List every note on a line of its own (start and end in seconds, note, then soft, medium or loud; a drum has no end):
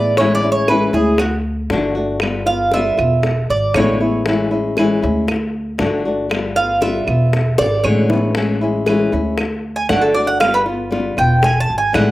0.00 0.87 A1 medium
0.00 0.17 G#3 soft
0.00 0.16 B3 soft
0.00 0.16 E4 soft
0.00 0.16 D5 loud
0.17 0.42 E3 medium
0.17 0.42 G#3 medium
0.17 0.43 C#4 medium
0.17 0.42 E4 medium
0.17 0.34 C#5 medium
0.17 high bongo medium
0.35 0.51 D5 loud
0.43 0.68 G#3 soft
0.43 0.68 C#4 soft
0.43 0.67 E4 medium
0.52 0.68 C#5 medium
0.68 0.93 E3 medium
0.68 0.93 G#3 medium
0.68 0.93 C#4 medium
0.68 0.92 E4 medium
0.68 0.93 B4 medium
0.68 high bongo medium
0.68 claves medium
0.93 1.66 D2 medium
0.93 1.19 G#3 soft
0.93 1.19 C#4 soft
0.93 1.18 E4 soft
0.93 1.19 G#4 medium
1.18 1.35 F#4 medium
1.18 muted nylon-string guitar stroke medium
1.18 high bongo medium
1.18 claves medium
1.70 2.91 G1 medium
1.70 1.95 D3 medium
1.70 1.95 A3 medium
1.70 1.95 D4 medium
1.70 1.94 F#4 medium
1.70 high bongo medium
1.70 low bongo medium
1.95 2.20 A3 soft
1.95 2.21 D4 soft
1.95 2.20 F#4 medium
2.20 2.46 G3 medium
2.20 2.46 B3 medium
2.20 2.45 F4 medium
2.20 high bongo medium
2.20 claves medium
2.46 2.72 B3 soft
2.46 2.71 F4 medium
2.46 2.72 F5 medium
2.46 high bongo soft
2.71 2.97 G3 medium
2.71 2.98 B3 medium
2.71 2.96 F4 medium
2.71 3.46 E5 medium
2.71 high bongo medium
2.97 3.46 E1 medium
2.97 3.23 B3 soft
2.97 3.22 F4 soft
2.97 high bongo soft
2.97 claves medium
3.23 muted nylon-string guitar stroke medium
3.23 high bongo medium
3.50 3.73 G#1 medium
3.50 3.75 D5 medium
3.74 4.96 A1 medium
3.74 3.99 B2 medium
3.74 4.00 D3 medium
3.74 4.00 G#3 medium
3.74 4.00 B3 medium
3.74 3.99 E4 medium
3.74 4.23 C#5 medium
3.74 high bongo medium
3.74 low bongo medium
3.74 claves medium
4.01 4.26 G#3 soft
4.01 4.26 B3 soft
4.01 4.25 E4 soft
4.01 high bongo soft
4.26 4.50 E3 medium
4.26 4.51 G#3 medium
4.26 4.51 C#4 medium
4.26 4.50 E4 medium
4.26 high bongo medium
4.51 4.76 G#3 soft
4.51 4.76 C#4 soft
4.51 4.76 E4 medium
4.77 5.02 E3 medium
4.77 5.02 G#3 medium
4.77 5.02 C#4 medium
4.77 5.01 E4 medium
4.77 high bongo medium
4.77 claves medium
5.02 5.76 D2 medium
5.02 5.28 G#3 soft
5.02 5.28 C#4 soft
5.02 5.27 E4 soft
5.28 muted nylon-string guitar stroke medium
5.28 high bongo medium
5.28 claves medium
5.78 7.01 G1 medium
5.78 6.03 D3 medium
5.78 6.04 A3 medium
5.78 6.04 D4 medium
5.78 6.04 F#4 medium
5.78 high bongo medium
5.78 low bongo medium
6.05 6.29 A3 soft
6.05 6.30 D4 soft
6.05 6.30 F#4 soft
6.30 6.55 G3 medium
6.30 6.56 B3 medium
6.30 6.55 F4 medium
6.30 high bongo medium
6.30 claves medium
6.56 6.81 B3 soft
6.56 6.81 F4 medium
6.56 6.81 F5 loud
6.56 high bongo soft
6.81 7.06 G3 medium
6.81 7.07 B3 medium
6.81 7.06 F4 medium
6.81 7.55 E5 medium
6.81 high bongo medium
7.07 7.55 E1 medium
7.07 7.33 B3 soft
7.07 7.32 F4 soft
7.07 high bongo soft
7.07 claves medium
7.33 muted nylon-string guitar stroke medium
7.33 high bongo medium
7.58 7.83 G#1 medium
7.58 7.84 D5 medium
7.58 high bongo loud
7.84 9.06 A1 medium
7.84 8.09 B2 medium
7.84 8.09 D3 medium
7.84 8.09 G#3 medium
7.84 8.09 B3 medium
7.84 8.08 E4 medium
7.84 8.32 C#5 medium
7.84 claves medium
8.09 8.35 G#3 soft
8.09 8.35 B3 soft
8.09 8.34 E4 soft
8.09 low bongo medium
8.35 8.60 E3 medium
8.35 8.61 G#3 medium
8.35 8.61 C#4 medium
8.35 8.60 E4 medium
8.35 high bongo medium
8.61 8.86 G#3 soft
8.61 8.87 C#4 soft
8.61 8.86 E4 soft
8.86 9.11 E3 medium
8.86 9.12 G#3 medium
8.86 9.12 C#4 medium
8.86 9.11 E4 medium
8.86 high bongo medium
8.86 claves medium
9.12 9.86 D2 medium
9.12 9.38 G#3 soft
9.12 9.38 C#4 soft
9.12 9.37 E4 soft
9.38 muted nylon-string guitar stroke medium
9.38 high bongo medium
9.38 claves medium
9.76 9.89 G#5 medium
9.89 11.11 G1 medium
9.89 10.14 D3 medium
9.89 10.15 A3 medium
9.89 10.15 D4 medium
9.89 10.14 F#4 medium
9.89 10.02 F#5 medium
9.89 high bongo medium
9.89 low bongo medium
10.02 10.14 A4 medium
10.14 10.40 A3 soft
10.14 10.40 D4 soft
10.14 10.40 F#4 medium
10.14 10.27 D5 medium
10.27 10.40 F#5 loud
10.40 10.65 G3 medium
10.40 10.66 B3 medium
10.40 10.65 F4 medium
10.40 10.53 F5 loud
10.40 high bongo medium
10.40 claves medium
10.54 10.62 B4 medium
10.66 10.91 B3 soft
10.66 10.91 F4 medium
10.66 high bongo soft
10.91 11.16 G3 medium
10.91 11.17 B3 medium
10.91 11.16 F4 medium
10.91 high bongo medium
11.17 11.65 E1 loud
11.17 11.42 B3 soft
11.17 11.42 F4 soft
11.17 11.43 G5 medium
11.17 high bongo soft
11.17 claves medium
11.42 11.60 G#5 loud
11.42 muted nylon-string guitar stroke medium
11.42 high bongo medium
11.60 11.77 A5 loud
11.70 11.93 G#1 medium
11.78 11.94 G#5 medium
11.93 12.11 A1 medium
11.93 12.11 B2 medium
11.93 12.11 D3 medium
11.93 12.11 G#3 medium
11.93 12.11 B3 medium
11.93 12.11 E4 medium
11.93 12.11 F#5 medium
11.93 high bongo medium
11.93 low bongo medium
11.93 claves medium